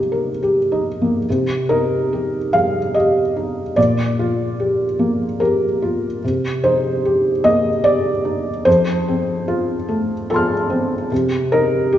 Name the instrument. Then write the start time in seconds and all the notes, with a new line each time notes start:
felt piano
Already playing: C3 G3 A#3 D#4 G4 C5
0.12 A#4
0.43 G4
0.72 D#4
1.02 A#3
1.30 C3
1.69 D#4 A#4
2.13 G4
2.53 G3 F5
2.94 G4 D#5
3.37 D#4
3.76 A#2 D5
4.19 F4
4.60 G4
4.99 A#3
5.40 G4 A#4
5.82 F4
6.24 C3
6.64 D#4 C5
7.05 G4
7.44 A#3 D#5
7.84 G4 D5
8.25 D#4
8.65 F2 C5
9.08 C4
9.48 F4
9.89 A3
10.30 F4 A4 A5 C6
10.36 F6
10.70 C4
11.12 C3
11.52 D#4 A#4
11.92 G4